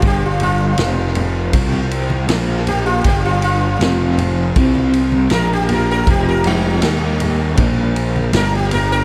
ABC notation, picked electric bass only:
X:1
M:4/4
L:1/8
Q:1/4=79
K:Gm
V:1 name="Picked electric bass" clef=bass
G,,,2 F,,,2 C,,2 B,,,2 | G,,,2 F,,,2 C,,2 B,,,2 | F,,,2 E,,2 B,,,2 G,,,2 |]